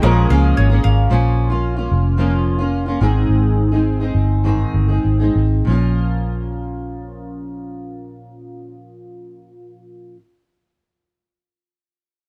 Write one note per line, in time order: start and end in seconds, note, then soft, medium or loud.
0.00 0.25 A#1 loud
0.00 0.29 A#2 medium
0.00 0.28 F3 medium
0.00 1.08 G#3 medium
0.00 1.16 G#3 medium
0.00 1.08 A#3 medium
0.00 0.30 A#3 medium
0.00 0.30 C#4 medium
0.00 0.52 A#4 medium
0.00 0.83 A#4 medium
0.04 1.09 C#4 medium
0.04 1.09 F4 medium
0.04 0.30 G#4 medium
0.04 1.10 A#4 medium
0.29 0.52 C#2 medium
0.29 0.70 F3 medium
0.29 0.71 A#3 medium
0.29 0.70 C#4 medium
0.29 0.68 G#4 medium
0.29 0.84 F5 medium
0.57 0.79 G#1 medium
0.57 1.16 C#5 medium
0.70 1.10 A#3 medium
0.70 1.11 C#4 medium
0.70 1.10 G#4 medium
0.84 1.06 G#1 medium
0.84 1.16 F5 medium
1.10 1.87 A#1 medium
1.10 1.50 A#2 medium
1.10 1.51 F3 medium
1.10 1.51 A#3 medium
1.10 1.50 C#4 medium
1.10 1.49 F4 medium
1.50 1.79 A#3 soft
1.50 1.77 C#4 soft
1.50 1.75 F4 medium
1.77 2.17 A#3 soft
1.77 2.18 C#4 soft
1.77 2.18 F4 medium
1.91 2.97 F1 medium
2.17 2.59 A#2 medium
2.17 2.59 F3 medium
2.17 2.59 A#3 medium
2.17 2.59 C#4 medium
2.17 2.57 F4 medium
2.58 2.88 A#3 soft
2.58 2.87 C#4 soft
2.58 2.85 F4 medium
2.86 3.02 A#3 soft
2.86 3.01 C#4 medium
2.86 3.00 F4 soft
3.01 3.24 G#1 medium
3.01 3.71 G#2 medium
3.01 3.72 D#3 medium
3.01 3.72 G#3 medium
3.01 3.72 C4 medium
3.01 3.71 D#4 medium
3.01 3.70 G#4 medium
3.29 4.11 G#1 medium
3.72 4.02 G#3 soft
3.72 4.01 C4 soft
3.72 4.00 D#4 soft
3.72 3.99 G#4 medium
4.00 4.44 G#3 soft
4.00 4.44 C4 soft
4.00 4.45 D#4 soft
4.00 4.44 G#4 soft
4.15 4.63 G1 medium
4.44 4.89 G#2 medium
4.44 4.89 D#3 medium
4.44 4.90 G#3 medium
4.44 4.90 C4 medium
4.44 4.88 D#4 medium
4.44 4.87 G#4 medium
4.74 4.99 G1 medium
4.88 5.21 G#3 soft
4.88 5.20 C4 soft
4.88 5.20 D#4 soft
4.88 5.18 G#4 soft
5.05 5.30 G#1 medium
5.20 5.67 G#3 soft
5.20 5.67 C4 soft
5.20 5.67 D#4 soft
5.20 5.66 G#4 soft
5.35 5.61 G#1 medium
5.65 10.13 A#1 medium
5.65 10.15 A#2 medium
5.65 10.17 F3 medium
5.69 10.19 C#4 medium
5.69 10.20 F4 medium
5.69 10.22 A#4 medium